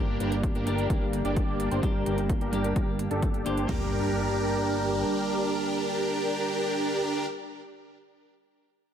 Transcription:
0.00 0.18 G1 medium
0.00 0.63 G2 medium
0.00 0.64 G3 medium
0.00 3.65 G3 medium
0.00 0.64 A#3 medium
0.00 3.65 A#3 medium
0.00 0.17 D4 medium
0.00 0.64 D4 medium
0.00 3.65 D4 medium
0.00 0.18 G4 medium
0.00 0.65 G4 medium
0.00 0.18 A#4 medium
0.20 0.53 G1 medium
0.20 0.35 D4 medium
0.20 0.35 G4 medium
0.20 0.35 A#4 medium
0.20 closed hi-hat medium
0.32 closed hi-hat soft
0.43 kick loud
0.43 closed hi-hat medium
0.55 0.88 G1 loud
0.55 0.87 D4 medium
0.55 0.87 G4 medium
0.55 0.87 A#4 medium
0.55 closed hi-hat soft
0.66 1.80 G2 medium
0.66 1.80 G3 medium
0.66 1.80 A#3 medium
0.66 1.81 D4 medium
0.66 1.81 G4 medium
0.66 closed hi-hat medium
0.78 closed hi-hat soft
0.90 1.23 G1 loud
0.90 1.05 D4 medium
0.90 1.05 G4 medium
0.90 1.05 A#4 medium
0.90 kick loud
0.90 closed hi-hat medium
1.13 closed hi-hat medium
1.25 1.69 G1 medium
1.25 1.69 D4 medium
1.25 1.69 G4 medium
1.25 1.69 D5 medium
1.25 closed hi-hat soft
1.36 kick loud
1.36 closed hi-hat medium
1.60 closed hi-hat medium
1.71 1.81 G1 medium
1.71 1.80 D4 loud
1.71 1.80 G4 medium
1.71 1.80 C5 loud
1.71 closed hi-hat soft
1.82 2.04 G1 medium
1.82 2.49 G2 medium
1.82 2.50 G3 medium
1.82 2.50 A#3 medium
1.82 2.03 D4 medium
1.82 2.50 D4 medium
1.82 2.04 G4 medium
1.82 2.51 G4 medium
1.82 2.03 A#4 medium
1.82 kick loud
1.82 closed hi-hat medium
2.06 2.39 G1 medium
2.06 2.21 D4 medium
2.06 2.21 G4 medium
2.06 2.21 A#4 medium
2.06 closed hi-hat medium
2.18 closed hi-hat soft
2.29 kick loud
2.29 closed hi-hat medium
2.41 2.74 G1 medium
2.41 2.73 D4 medium
2.41 2.73 G4 medium
2.41 2.73 A#4 medium
2.41 closed hi-hat soft
2.52 3.43 G2 medium
2.52 3.43 G3 medium
2.52 3.43 A#3 medium
2.52 3.44 D4 medium
2.52 3.44 G4 medium
2.52 closed hi-hat medium
2.64 closed hi-hat soft
2.76 3.09 G1 medium
2.76 2.91 D4 medium
2.76 2.91 G4 medium
2.76 2.91 A#4 medium
2.76 kick loud
2.76 closed hi-hat medium
2.99 closed hi-hat medium
3.11 3.43 G1 loud
3.11 3.43 D4 medium
3.11 3.43 G4 medium
3.11 3.43 A4 loud
3.11 closed hi-hat soft
3.23 kick loud
3.23 closed hi-hat medium
3.34 closed hi-hat soft
3.45 3.67 G1 medium
3.45 3.66 G2 medium
3.45 3.66 G3 medium
3.45 3.66 A#3 medium
3.45 3.66 D4 medium
3.45 3.66 G4 medium
3.45 3.67 G4 medium
3.45 3.66 C5 medium
3.45 closed hi-hat medium
3.57 closed hi-hat soft
3.67 5.05 G1 medium
3.67 7.24 G3 medium
3.67 7.26 G3 medium
3.67 7.26 A#3 medium
3.67 7.26 D4 medium
3.67 7.27 D4 medium
3.67 7.26 G4 medium
3.67 7.28 G4 medium
3.67 7.26 A#4 medium
3.67 kick loud
3.67 floor tom loud
3.67 crash medium
3.67 impact medium

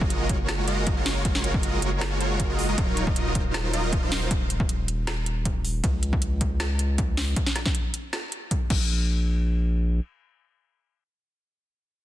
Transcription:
0.00 2.76 F#1 medium
0.00 0.27 F4 medium
0.00 0.27 F#4 medium
0.00 0.27 A#4 medium
0.00 0.27 D#5 medium
0.00 kick loud
0.10 closed hi-hat medium
0.29 0.66 G#3 medium
0.29 0.66 F4 medium
0.29 0.66 F#4 medium
0.29 0.66 A#4 medium
0.29 kick medium
0.29 closed hi-hat medium
0.49 snare loud
0.49 closed hi-hat medium
0.68 0.94 G#3 loud
0.68 0.95 F4 medium
0.68 0.95 F#4 medium
0.68 0.94 A#4 medium
0.68 0.94 D#5 loud
0.68 closed hi-hat medium
0.87 kick loud
0.87 closed hi-hat medium
0.97 1.23 G#3 medium
0.97 1.23 F4 medium
0.97 1.23 F#4 medium
0.97 1.23 A#4 medium
0.97 1.23 C#5 medium
1.06 snare medium
1.06 open hi-hat medium
1.25 1.52 G#3 medium
1.25 1.52 F4 medium
1.25 1.52 F#4 medium
1.25 1.52 A#4 medium
1.25 1.52 C#5 loud
1.25 kick loud
1.25 closed hi-hat medium
1.25 ride medium
1.35 snare medium
1.44 closed hi-hat medium
1.54 1.80 G#3 medium
1.54 1.80 F#4 medium
1.54 1.80 D#5 medium
1.54 kick loud
1.63 closed hi-hat medium
1.82 2.18 G#3 medium
1.82 2.19 F4 medium
1.82 2.19 F#4 medium
1.82 2.19 A#4 medium
1.82 2.19 C#5 medium
1.82 closed hi-hat medium
2.01 snare loud
2.01 closed hi-hat medium
2.21 2.47 G#3 medium
2.21 2.47 F4 medium
2.21 2.47 F#4 medium
2.21 2.47 A#4 medium
2.21 2.47 C#5 loud
2.21 closed hi-hat medium
2.40 kick medium
2.40 closed hi-hat medium
2.50 2.67 G#3 medium
2.50 2.66 F4 medium
2.50 2.67 F#4 medium
2.50 2.67 A#4 medium
2.50 2.67 D#5 medium
2.59 open hi-hat medium
2.69 2.76 G#3 medium
2.69 2.76 F4 medium
2.69 2.76 F#4 medium
2.69 2.76 A#4 medium
2.69 2.76 D#5 medium
2.78 5.82 D#1 medium
2.78 3.05 F#3 medium
2.78 3.05 D#4 medium
2.78 3.05 F4 medium
2.78 3.05 A#4 medium
2.78 3.05 C#5 loud
2.78 kick loud
2.78 closed hi-hat medium
2.78 ride medium
2.97 closed hi-hat medium
3.07 kick loud
3.16 closed hi-hat medium
3.35 3.71 F#3 medium
3.35 kick medium
3.35 closed hi-hat medium
3.54 snare loud
3.54 closed hi-hat medium
3.73 4.00 F#3 loud
3.73 4.00 D#4 medium
3.73 4.00 F4 medium
3.73 4.00 A#4 loud
3.73 4.00 D#5 loud
3.73 closed hi-hat medium
3.93 kick loud
3.93 closed hi-hat medium
4.03 4.29 F#3 medium
4.03 4.29 D#4 medium
4.03 4.29 F4 medium
4.03 4.29 A#4 medium
4.03 4.29 C5 medium
4.12 snare medium
4.12 open hi-hat medium
4.31 kick loud
4.31 closed hi-hat medium
4.31 ride medium
4.50 closed hi-hat medium
4.60 kick loud
4.69 closed hi-hat medium
4.88 closed hi-hat medium
5.07 snare loud
5.07 closed hi-hat medium
5.26 closed hi-hat medium
5.45 kick medium
5.45 closed hi-hat medium
5.65 open hi-hat medium
5.84 7.35 C#2 medium
5.84 kick loud
5.84 closed hi-hat medium
5.84 ride soft
6.03 closed hi-hat medium
6.13 kick loud
6.22 closed hi-hat medium
6.41 kick medium
6.41 closed hi-hat medium
6.60 snare loud
6.60 closed hi-hat medium
6.79 closed hi-hat medium
6.98 kick loud
6.98 closed hi-hat medium
7.17 snare medium
7.17 open hi-hat medium
7.36 kick loud
7.36 closed hi-hat medium
7.36 ride soft
7.46 snare medium
7.56 snare medium
7.56 closed hi-hat medium
7.66 kick loud
7.66 snare medium
7.75 closed hi-hat medium
7.94 closed hi-hat medium
8.13 snare loud
8.13 closed hi-hat medium
8.32 closed hi-hat medium
8.51 kick medium
8.51 closed hi-hat medium
8.70 10.00 A#1 loud
8.70 kick loud
8.70 crash medium

